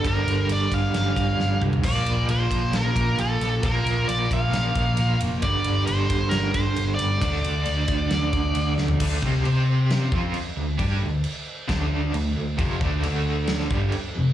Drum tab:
CC |----------------|x---------------|----------------|----------------|
RD |x-x-x-x-x-x-----|--x-x-x-x-x-x-x-|x-x-x-x-x-x-x-x-|x-x-x-x-x-x-x-x-|
SD |--------o---o---|--------o-----o-|--------o-------|--------o-----o-|
T2 |--------------o-|----------------|----------------|----------------|
FT |---------------o|----------------|----------------|----------------|
BD |o-----o---o-----|o-----o---o-----|o-----o---o-----|o-----o---o-----|

CC |----------------|x---x---x---x---|x---x---x---x---|x---x---x---x---|
RD |x-x-x-x-x-x-x---|----------------|----------------|----------------|
SD |--------o-----o-|--------o-------|--------o-------|--------oo------|
T2 |----------------|----------------|----------------|----------------|
FT |---------------o|----------------|----------------|----------------|
BD |o-----o---o-----|o-o-------o-----|o-------o-------|o-o-------o-----|